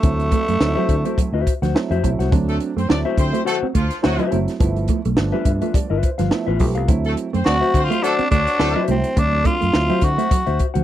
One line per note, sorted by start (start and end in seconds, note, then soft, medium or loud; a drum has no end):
0.00 0.29 D2 loud
0.00 0.40 F#3 medium
0.00 1.46 A3 medium
0.00 0.41 A3 medium
0.00 0.41 C4 medium
0.00 0.41 E4 medium
0.00 kick loud
0.00 closed hi-hat medium
0.20 muted clean electric guitar stroke soft
0.20 closed hi-hat soft
0.31 0.43 A3 medium
0.31 kick medium
0.31 closed hi-hat medium
0.48 0.60 F#2 medium
0.48 0.57 A3 medium
0.48 closed hi-hat soft
0.60 0.75 D2 medium
0.60 1.35 F#3 medium
0.60 1.34 A3 medium
0.60 1.35 C4 medium
0.60 0.68 D#4 medium
0.60 snare loud
0.68 1.38 E4 loud
0.75 0.86 F#3 medium
0.75 0.95 F#4 medium
0.75 0.95 C5 medium
0.75 0.94 E5 medium
0.89 1.03 D3 medium
0.89 kick medium
0.89 closed hi-hat medium
1.05 1.14 A3 medium
1.05 1.19 F#4 soft
1.05 1.19 C5 medium
1.05 1.19 E5 medium
1.05 closed hi-hat medium
1.18 1.29 F#3 medium
1.18 muted fingered electric bass stroke medium
1.18 kick medium
1.18 closed hi-hat loud
1.33 1.44 D2 medium
1.33 1.53 F#4 medium
1.33 1.53 C5 medium
1.33 1.52 E5 medium
1.33 muted clean electric guitar stroke soft
1.47 kick medium
1.47 closed hi-hat medium
1.62 1.73 D2 medium
1.62 1.71 F3 medium
1.62 1.76 F#4 soft
1.62 1.76 C5 medium
1.62 1.76 F#5 medium
1.62 snare soft
1.62 closed hi-hat medium
1.74 1.94 F#3 medium
1.74 1.94 A3 medium
1.74 1.94 C4 medium
1.74 1.94 E4 medium
1.74 snare loud
1.91 2.02 F2 loud
1.91 2.09 F#4 medium
1.91 2.09 C5 medium
1.91 2.09 E5 medium
1.91 closed hi-hat soft
2.03 2.18 B1 loud
2.03 2.22 F#3 medium
2.03 2.15 F#3 medium
2.03 2.23 A3 medium
2.03 2.23 C4 medium
2.03 2.23 E4 medium
2.03 kick medium
2.03 closed hi-hat medium
2.19 2.30 C2 medium
2.19 2.33 F#4 medium
2.19 2.33 C5 medium
2.19 2.33 F#5 medium
2.19 snare soft
2.19 closed hi-hat medium
2.32 2.58 D2 loud
2.32 2.69 F#3 medium
2.32 2.43 F#3 medium
2.32 2.69 A3 medium
2.32 2.69 C4 medium
2.32 2.69 D4 loud
2.32 kick loud
2.32 closed hi-hat medium
2.48 2.56 A3 medium
2.48 2.56 A4 medium
2.48 closed hi-hat soft
2.60 muted clean electric guitar stroke soft
2.60 closed hi-hat medium
2.76 2.88 F#2 medium
2.76 2.85 A3 medium
2.76 2.86 C4 medium
2.76 2.86 C5 medium
2.76 closed hi-hat soft
2.88 3.04 D2 medium
2.88 3.63 F#3 medium
2.88 3.63 A3 medium
2.88 3.00 C4 medium
2.88 3.63 C4 medium
2.88 2.98 D4 medium
2.88 3.63 E4 loud
2.88 2.99 D5 medium
2.88 snare loud
3.05 3.24 F#4 medium
3.05 3.23 C5 medium
3.05 3.23 E5 loud
3.05 muted clean electric guitar stroke soft
3.17 3.32 D3 loud
3.17 3.40 C4 medium
3.17 3.40 C5 loud
3.17 kick medium
3.17 closed hi-hat medium
3.33 3.42 A3 medium
3.33 3.44 F#4 soft
3.33 3.45 C5 medium
3.33 3.46 E5 medium
3.33 closed hi-hat medium
3.45 3.55 A3 medium
3.45 3.66 F#4 medium
3.45 3.55 A4 loud
3.45 3.66 C5 medium
3.45 3.66 F#5 loud
3.45 muted clean electric guitar stroke soft
3.45 closed hi-hat medium
3.62 3.71 C4 medium
3.62 muted fingered electric bass stroke soft
3.74 3.89 D2 loud
3.74 3.97 F3 loud
3.74 3.86 A3 medium
3.74 3.97 F4 loud
3.74 kick medium
3.74 closed hi-hat medium
3.91 snare soft
3.91 closed hi-hat medium
4.02 4.18 D2 medium
4.02 4.22 F#3 medium
4.02 4.26 F#3 loud
4.02 4.22 A3 medium
4.02 4.22 C4 medium
4.02 4.22 E4 medium
4.02 4.19 F#4 medium
4.02 4.26 F#4 loud
4.02 4.18 C5 medium
4.02 4.19 F#5 medium
4.02 muted clean electric guitar stroke soft
4.02 snare loud
4.19 4.28 F#3 medium
4.19 4.38 F#4 medium
4.19 4.38 C5 medium
4.19 4.38 E5 medium
4.19 closed hi-hat soft
4.30 4.46 F#1 medium
4.30 4.50 F#3 medium
4.30 4.50 A3 medium
4.30 4.43 A3 medium
4.30 4.51 C4 medium
4.30 4.51 E4 medium
4.30 closed hi-hat medium
4.48 snare soft
4.48 closed hi-hat medium
4.60 4.86 G1 medium
4.60 4.97 F3 medium
4.60 4.97 A3 medium
4.60 4.97 B3 medium
4.60 4.98 E4 loud
4.60 kick loud
4.60 closed hi-hat medium
4.76 muted clean electric guitar stroke soft
4.76 closed hi-hat soft
4.88 5.00 A3 medium
4.88 kick medium
4.88 closed hi-hat medium
5.05 5.16 B1 medium
5.05 5.14 A3 medium
5.05 closed hi-hat medium
5.17 5.32 G1 medium
5.17 5.91 F3 medium
5.17 5.91 A3 medium
5.17 5.91 B3 medium
5.17 5.92 D4 medium
5.17 snare loud
5.32 5.42 G3 medium
5.32 5.51 F4 medium
5.32 5.51 B4 medium
5.32 5.51 E5 medium
5.45 5.60 G2 medium
5.45 5.72 E5 medium
5.45 muted clean electric guitar stroke soft
5.45 kick medium
5.45 closed hi-hat medium
5.62 5.71 A3 medium
5.62 5.76 F4 soft
5.62 5.75 B4 medium
5.62 5.75 E5 medium
5.62 closed hi-hat soft
5.74 5.86 G3 medium
5.74 6.01 D5 medium
5.74 muted fingered electric bass stroke soft
5.74 kick loud
5.74 closed hi-hat medium
5.90 6.01 G1 medium
5.90 6.09 F4 medium
5.90 6.09 B4 medium
5.90 6.09 E5 medium
5.90 muted clean electric guitar stroke soft
6.03 6.29 C5 medium
6.03 kick medium
6.03 closed hi-hat medium
6.18 6.30 G1 loud
6.18 6.28 F3 medium
6.18 6.33 F4 soft
6.18 6.32 B4 medium
6.18 6.32 F5 medium
6.18 snare soft
6.18 closed hi-hat medium
6.30 6.50 F3 medium
6.30 6.50 A3 medium
6.30 6.50 B3 medium
6.30 6.51 E4 loud
6.30 6.58 B4 medium
6.30 snare loud
6.47 6.60 A1 medium
6.47 6.66 F4 medium
6.47 6.66 B4 medium
6.47 6.65 E5 medium
6.59 6.77 B1 medium
6.59 6.79 F3 medium
6.59 6.71 G3 medium
6.59 6.79 A3 medium
6.59 6.79 B3 medium
6.59 6.79 G4 loud
6.59 6.86 A4 medium
6.59 kick medium
6.59 open hi-hat medium
6.75 6.88 C2 medium
6.75 6.89 F4 soft
6.75 6.89 B4 medium
6.75 6.89 F5 medium
6.75 closed hi-hat medium
6.88 7.14 D2 medium
6.88 7.25 F#3 medium
6.88 7.00 F#3 medium
6.88 7.25 A3 medium
6.88 7.26 C4 medium
6.88 7.26 E4 loud
6.88 kick loud
6.88 closed hi-hat medium
7.05 7.12 A3 medium
7.05 7.12 A4 medium
7.05 closed hi-hat soft
7.16 muted clean electric guitar stroke soft
7.16 closed hi-hat medium
7.33 7.45 F#2 medium
7.33 7.42 A3 medium
7.33 7.43 C4 medium
7.33 7.43 C5 medium
7.33 closed hi-hat soft
7.45 7.60 D2 medium
7.45 8.19 F#3 medium
7.45 8.20 A3 medium
7.45 8.20 C4 medium
7.45 7.57 C4 medium
7.45 7.55 D4 medium
7.45 7.86 F#4 loud
7.45 8.20 F#4 medium
7.45 7.55 D5 medium
7.45 snare loud
7.61 7.80 F#4 medium
7.61 7.80 C5 medium
7.61 7.79 E5 medium
7.61 muted clean electric guitar stroke soft
7.61 closed hi-hat soft
7.74 7.89 D3 medium
7.74 7.97 C4 loud
7.74 7.97 C5 loud
7.74 kick medium
7.74 closed hi-hat medium
7.85 8.05 F4 medium
7.90 7.99 A3 medium
7.90 8.01 F#4 soft
7.90 8.01 C5 soft
7.90 8.03 E5 medium
7.90 closed hi-hat medium
8.02 8.12 A3 medium
8.02 8.30 D4 loud
8.02 8.23 F#4 medium
8.02 8.13 A4 loud
8.02 8.23 C5 medium
8.02 8.24 F#5 medium
8.02 muted clean electric guitar stroke soft
8.02 closed hi-hat loud
8.19 8.27 C4 medium
8.19 muted fingered electric bass stroke soft
8.19 closed hi-hat soft
8.31 8.46 D2 medium
8.31 8.54 F#3 medium
8.31 8.42 A3 medium
8.31 8.84 D4 loud
8.31 8.54 F#4 medium
8.31 kick medium
8.31 closed hi-hat medium
8.47 snare soft
8.47 closed hi-hat medium
8.59 8.74 D2 medium
8.59 8.79 F#3 medium
8.59 8.82 A3 loud
8.59 8.79 A3 medium
8.59 8.79 C4 medium
8.59 8.80 E4 medium
8.59 8.75 F#4 medium
8.59 8.82 A4 loud
8.59 8.75 C5 medium
8.59 8.75 F#5 medium
8.59 muted clean electric guitar stroke soft
8.59 snare loud
8.76 8.85 F#3 medium
8.76 8.95 F#4 medium
8.76 8.95 C5 medium
8.76 8.95 E5 medium
8.88 9.03 C2 medium
8.88 9.08 F#3 medium
8.88 9.08 A3 medium
8.88 9.00 A3 medium
8.88 9.08 C4 medium
8.88 9.20 C4 medium
8.88 9.08 E4 medium
8.88 closed hi-hat medium
9.04 closed hi-hat medium
9.16 9.42 D2 loud
9.16 9.54 F#3 medium
9.16 9.54 A3 medium
9.16 9.54 C4 medium
9.16 9.54 D4 medium
9.16 9.48 D4 loud
9.16 kick loud
9.16 closed hi-hat medium
9.33 muted clean electric guitar stroke soft
9.44 9.56 A3 medium
9.44 10.06 F4 medium
9.44 kick medium
9.44 closed hi-hat medium
9.61 9.73 F#2 medium
9.61 9.70 A3 medium
9.61 closed hi-hat soft
9.72 9.89 D2 medium
9.72 10.48 F#3 medium
9.72 10.48 A3 medium
9.72 10.48 C4 medium
9.72 10.48 E4 medium
9.72 snare loud
9.89 9.99 F#3 medium
9.89 10.09 F#4 medium
9.89 10.08 C5 medium
9.89 10.08 E5 medium
9.89 closed hi-hat soft
10.01 10.17 D3 medium
10.01 10.61 F#4 loud
10.01 muted clean electric guitar stroke soft
10.01 kick medium
10.01 closed hi-hat medium
10.18 10.27 A3 medium
10.18 10.33 F#4 soft
10.18 10.32 C5 medium
10.18 10.32 E5 medium
10.18 closed hi-hat medium
10.31 10.43 F#3 medium
10.31 muted fingered electric bass stroke soft
10.31 kick loud
10.31 closed hi-hat loud
10.46 10.59 D2 medium
10.46 10.66 F#4 medium
10.46 10.66 C5 medium
10.46 10.65 E5 medium
10.46 closed hi-hat soft
10.59 kick medium
10.59 closed hi-hat medium
10.74 10.84 D2 loud
10.74 10.84 F3 medium
10.74 10.84 F#4 soft
10.74 10.84 C5 soft
10.74 10.84 F#5 medium
10.74 closed hi-hat medium